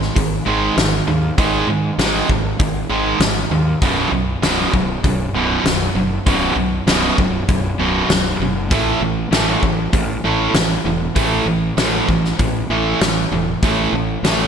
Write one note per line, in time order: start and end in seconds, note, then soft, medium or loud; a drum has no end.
0.00 0.13 G#2 medium
0.00 0.13 D#3 medium
0.00 snare soft
0.16 0.39 G#1 medium
0.16 0.43 G#2 medium
0.16 0.43 D#3 medium
0.16 kick medium
0.16 open hi-hat medium
0.45 0.69 G#1 medium
0.45 0.74 G#2 medium
0.45 0.75 D#3 medium
0.45 0.75 G#3 medium
0.76 1.00 G#1 loud
0.76 1.04 G#2 medium
0.76 1.04 D#3 medium
0.76 snare loud
0.76 open hi-hat medium
1.07 1.30 D#2 medium
1.07 1.35 G#2 medium
1.07 1.35 D#3 medium
1.38 1.60 G#1 medium
1.38 1.66 G#2 medium
1.38 1.67 D#3 medium
1.38 1.67 G#3 medium
1.38 kick loud
1.38 open hi-hat soft
1.67 1.90 G#2 medium
1.67 1.96 G#2 medium
1.67 1.96 D#3 medium
1.98 2.21 G#1 medium
1.98 2.27 G#2 medium
1.98 2.28 D#3 medium
1.98 2.28 G#3 medium
1.98 snare loud
1.98 open hi-hat soft
2.29 2.52 G#1 medium
2.29 2.57 G#2 medium
2.29 2.57 D#3 medium
2.29 kick medium
2.59 2.82 G#1 medium
2.59 2.87 G#2 medium
2.59 2.87 D#3 medium
2.59 kick loud
2.59 open hi-hat soft
2.89 3.12 G#1 medium
2.89 3.19 G#2 medium
2.89 3.19 D#3 medium
2.89 3.19 G#3 medium
3.20 3.43 G#1 medium
3.20 3.48 G#2 medium
3.20 3.48 D#3 medium
3.20 snare loud
3.20 open hi-hat medium
3.50 3.73 D#2 medium
3.50 3.79 G#2 medium
3.50 3.79 D#3 medium
3.82 4.04 B0 medium
3.82 4.10 B1 medium
3.82 4.11 F#2 medium
3.82 4.11 B2 medium
3.82 kick medium
3.82 open hi-hat soft
4.12 4.35 B1 medium
4.12 4.40 B1 medium
4.12 4.40 F#2 medium
4.42 4.65 B0 medium
4.42 4.71 B1 medium
4.42 4.72 F#2 medium
4.42 4.72 B2 loud
4.42 snare loud
4.42 open hi-hat soft
4.73 4.96 B0 medium
4.73 5.01 B1 medium
4.73 5.01 F#2 medium
4.73 kick medium
5.04 5.26 B0 medium
5.04 5.31 B1 medium
5.04 5.32 F#2 medium
5.04 kick loud
5.04 open hi-hat soft
5.33 5.56 B0 medium
5.33 5.63 B1 medium
5.33 5.63 F#2 medium
5.33 5.64 B2 medium
5.64 5.87 B0 medium
5.64 5.93 B1 medium
5.64 5.93 F#2 medium
5.64 snare loud
5.64 open hi-hat medium
5.95 6.18 F#1 medium
5.95 6.23 B1 medium
5.95 6.24 F#2 medium
6.26 6.49 B0 medium
6.26 6.55 B1 medium
6.26 6.55 F#2 medium
6.26 6.56 B2 medium
6.26 kick loud
6.26 open hi-hat soft
6.56 6.79 B1 medium
6.56 6.84 B1 medium
6.56 6.85 F#2 medium
6.86 7.09 B0 medium
6.86 7.16 B1 medium
6.86 7.17 F#2 medium
6.86 7.17 B2 medium
6.86 snare loud
6.86 open hi-hat medium
7.18 7.41 B0 medium
7.18 7.46 B1 medium
7.18 7.46 F#2 medium
7.18 kick medium
7.48 7.71 B0 medium
7.48 7.76 B1 medium
7.48 7.76 F#2 medium
7.48 kick loud
7.48 open hi-hat soft
7.78 8.02 B0 medium
7.78 8.07 B1 medium
7.78 8.08 F#2 medium
7.78 8.08 B2 medium
8.09 8.32 B0 medium
8.09 8.37 B1 medium
8.09 8.37 F#2 medium
8.09 snare loud
8.09 open hi-hat soft
8.40 8.71 F#1 medium
8.40 8.68 B1 medium
8.40 8.68 F#2 medium
8.70 8.94 A1 loud
8.70 9.00 A2 medium
8.70 9.00 E3 medium
8.70 9.00 A3 loud
8.70 kick loud
8.70 open hi-hat soft
9.01 9.24 A1 medium
9.01 9.29 A2 medium
9.01 9.29 E3 medium
9.31 9.54 A1 medium
9.31 9.61 A2 medium
9.31 9.61 E3 medium
9.31 9.61 A3 medium
9.31 snare loud
9.31 open hi-hat medium
9.62 9.85 A1 medium
9.62 9.90 A2 medium
9.62 9.90 E3 medium
9.62 kick medium
9.93 10.16 A1 medium
9.93 10.21 A2 medium
9.93 10.21 E3 medium
9.93 kick loud
9.93 open hi-hat soft
10.24 10.47 A1 medium
10.24 10.53 A2 medium
10.24 10.53 E3 medium
10.24 10.54 A3 medium
10.54 10.77 A1 medium
10.54 10.82 A2 medium
10.54 10.82 E3 medium
10.54 snare loud
10.54 open hi-hat medium
10.85 11.08 E1 medium
10.85 11.13 A2 medium
10.85 11.13 E3 medium
11.15 11.39 A1 medium
11.15 11.45 A2 medium
11.15 11.45 E3 medium
11.15 11.45 A3 medium
11.15 kick medium
11.15 open hi-hat soft
11.46 11.69 A1 medium
11.46 11.74 A2 medium
11.46 11.75 E3 medium
11.77 12.00 A1 medium
11.77 12.07 A2 medium
11.77 12.07 E3 loud
11.77 12.07 A3 medium
11.77 snare loud
11.77 open hi-hat medium
12.08 12.31 A1 medium
12.08 12.36 A2 medium
12.08 12.36 E3 medium
12.08 kick medium
12.25 snare soft
12.39 12.62 A1 medium
12.39 12.67 A2 medium
12.39 12.67 E3 medium
12.39 kick loud
12.39 open hi-hat soft
12.70 12.93 A1 medium
12.70 12.99 A2 medium
12.70 12.99 E3 medium
12.70 13.00 A3 medium
13.01 13.24 A1 medium
13.01 13.29 A2 medium
13.01 13.29 E3 medium
13.01 snare loud
13.01 open hi-hat medium
13.31 13.54 E1 medium
13.31 13.60 A2 medium
13.31 13.60 E3 medium
13.63 13.85 A1 medium
13.63 13.91 A2 medium
13.63 13.92 E3 medium
13.63 13.92 A3 medium
13.63 kick loud
13.63 open hi-hat soft
13.93 14.16 A1 medium
13.93 14.21 A2 medium
13.93 14.22 E3 medium
14.23 14.46 A1 medium
14.23 14.47 A2 medium
14.23 14.47 E3 medium
14.23 14.47 A3 medium
14.23 snare loud
14.23 open hi-hat medium